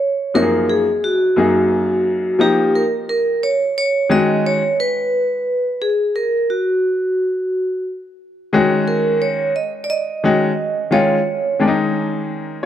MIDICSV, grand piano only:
0, 0, Header, 1, 2, 480
1, 0, Start_track
1, 0, Tempo, 681818
1, 246, Time_signature, 4, 2, 24, 8
1, 8908, End_track
2, 0, Start_track
2, 0, Title_t, "Grand piano"
2, 0, Program_c, 0, 0
2, 242, Note_on_c, 0, 42, 53
2, 245, Note_on_c, 0, 53, 48
2, 248, Note_on_c, 0, 58, 54
2, 249, Note_on_c, 0, 63, 50
2, 251, Note_on_c, 0, 66, 51
2, 297, Note_on_c, 0, 68, 55
2, 302, Note_off_c, 0, 66, 0
2, 596, Note_off_c, 0, 42, 0
2, 597, Note_off_c, 0, 53, 0
2, 599, Note_off_c, 0, 58, 0
2, 599, Note_off_c, 0, 63, 0
2, 624, Note_off_c, 0, 68, 0
2, 960, Note_on_c, 0, 42, 59
2, 962, Note_on_c, 0, 54, 54
2, 965, Note_on_c, 0, 58, 49
2, 967, Note_on_c, 0, 63, 52
2, 971, Note_on_c, 0, 68, 64
2, 1643, Note_off_c, 0, 42, 0
2, 1644, Note_off_c, 0, 54, 0
2, 1645, Note_off_c, 0, 58, 0
2, 1646, Note_off_c, 0, 63, 0
2, 1649, Note_off_c, 0, 68, 0
2, 1681, Note_on_c, 0, 53, 57
2, 1686, Note_on_c, 0, 58, 48
2, 1688, Note_on_c, 0, 63, 54
2, 1692, Note_on_c, 0, 67, 62
2, 1979, Note_off_c, 0, 53, 0
2, 1982, Note_off_c, 0, 58, 0
2, 1983, Note_off_c, 0, 63, 0
2, 1985, Note_off_c, 0, 67, 0
2, 2882, Note_on_c, 0, 51, 71
2, 2884, Note_on_c, 0, 56, 67
2, 2889, Note_on_c, 0, 61, 68
2, 2892, Note_on_c, 0, 66, 72
2, 3236, Note_off_c, 0, 51, 0
2, 3237, Note_off_c, 0, 56, 0
2, 3240, Note_off_c, 0, 61, 0
2, 3241, Note_off_c, 0, 66, 0
2, 6003, Note_on_c, 0, 51, 72
2, 6007, Note_on_c, 0, 56, 69
2, 6012, Note_on_c, 0, 61, 70
2, 6013, Note_on_c, 0, 66, 77
2, 6684, Note_off_c, 0, 51, 0
2, 6686, Note_off_c, 0, 56, 0
2, 6689, Note_off_c, 0, 61, 0
2, 6689, Note_off_c, 0, 66, 0
2, 7206, Note_on_c, 0, 51, 68
2, 7208, Note_on_c, 0, 56, 52
2, 7211, Note_on_c, 0, 61, 61
2, 7217, Note_on_c, 0, 66, 72
2, 7386, Note_off_c, 0, 51, 0
2, 7387, Note_off_c, 0, 56, 0
2, 7388, Note_off_c, 0, 61, 0
2, 7391, Note_off_c, 0, 66, 0
2, 7678, Note_on_c, 0, 51, 59
2, 7684, Note_on_c, 0, 56, 59
2, 7688, Note_on_c, 0, 61, 59
2, 7689, Note_on_c, 0, 65, 75
2, 7862, Note_off_c, 0, 51, 0
2, 7865, Note_off_c, 0, 56, 0
2, 7867, Note_off_c, 0, 61, 0
2, 7868, Note_off_c, 0, 65, 0
2, 8162, Note_on_c, 0, 51, 58
2, 8165, Note_on_c, 0, 56, 57
2, 8168, Note_on_c, 0, 61, 52
2, 8172, Note_on_c, 0, 62, 53
2, 8219, Note_on_c, 0, 63, 66
2, 8222, Note_off_c, 0, 62, 0
2, 8844, Note_off_c, 0, 51, 0
2, 8846, Note_off_c, 0, 56, 0
2, 8847, Note_off_c, 0, 61, 0
2, 8872, Note_off_c, 0, 63, 0
2, 8908, End_track
0, 0, End_of_file